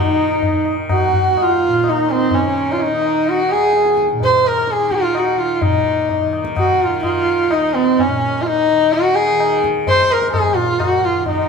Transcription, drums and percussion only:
0.42 tabla tin, tabla ge
0.65 tabla na
0.89 tabla na, tabla ge
1.13 tabla ge
1.37 tabla na, tabla ge
1.84 tabla na
2.31 tabla tin, tabla ge
2.78 tabla tin
3.02 tabla na
3.26 tabla tin
3.49 tabla na
3.73 tabla te
3.85 tabla te
3.97 tabla ke
4.09 tabla te
4.20 tabla tin, tabla ge
4.45 tabla na
4.67 tabla te
4.79 tabla te
4.91 tabla ke
5.03 tabla te
5.15 tabla na
5.62 tabla tin, tabla ge
6.09 tabla tin, tabla ge
6.33 tabla na
6.45 tabla ke
6.57 tabla na, tabla ge
6.81 tabla ge
7.03 tabla na, tabla ge
7.51 tabla na
7.98 tabla tin, tabla ge
8.45 tabla tin
8.92 tabla tin
9.16 tabla na
9.40 tabla na
9.64 tabla ke
9.87 tabla tin, tabla ge
10.10 tabla na
10.22 tabla ke
10.34 tabla na, tabla ge
10.58 tabla te
10.80 tabla na, tabla ge
11.03 tabla ge
11.26 tabla tin, tabla ge

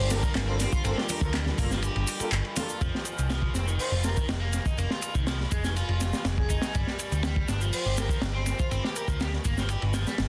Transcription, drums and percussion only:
0.10 snare, open hi-hat, ride, shaker
0.23 kick, shaker
0.35 snare, clap, ride, shaker
0.60 snare, open hi-hat, ride, shaker
0.72 kick, shaker
0.84 ride, shaker
0.98 snare
1.09 open hi-hat, ride, high conga, shaker
1.21 kick, shaker
1.34 snare, clap, ride, shaker
1.46 snare, high conga
1.58 kick, open hi-hat, ride, low conga, shaker
1.71 snare, shaker
1.82 ride, shaker
1.96 ride
2.07 open hi-hat, ride, shaker
2.20 ride, shaker
2.32 clap, ride, shaker
2.45 ride
2.56 snare, open hi-hat, ride, high conga, shaker
2.69 shaker
2.81 kick, ride, shaker
2.95 snare
3.05 ride, shaker
3.18 ride, shaker
3.30 snare, ride, shaker
3.42 kick
3.55 snare, ride, shaker
3.68 shaker
3.79 open hi-hat, shaker
4.04 snare, ride, shaker
4.17 kick, shaker
4.29 snare, ride, shaker
4.53 snare, ride, shaker
4.66 kick, shaker
4.78 ride, shaker
4.90 snare
5.02 ride, shaker
5.15 kick, shaker
5.27 snare, ride, shaker
5.40 snare
5.52 kick, ride, shaker
5.64 snare, shaker
5.76 ride, shaker
5.89 ride
6.01 snare, ride, shaker
6.13 snare, shaker
6.25 snare, ride, shaker
6.38 kick
6.50 kick, ride, shaker
6.62 snare, ride, shaker
6.75 kick, ride, shaker
6.87 snare
6.99 ride, shaker
7.12 ride, shaker
7.23 snare, ride, shaker
7.36 kick
7.48 snare, ride, shaker
7.61 shaker
7.73 open hi-hat, shaker
7.98 snare, ride, shaker
8.09 kick, shaker
8.22 snare, ride, shaker
8.46 snare, ride, shaker
8.59 kick, shaker
8.71 ride, shaker
8.84 snare
8.96 ride, shaker
9.08 kick, shaker
9.20 snare, ride, shaker
9.33 snare
9.45 kick, ride, shaker
9.58 snare, shaker
9.69 ride, shaker
9.82 ride
9.94 snare, ride, shaker
10.07 snare, shaker
10.18 snare, ride, shaker

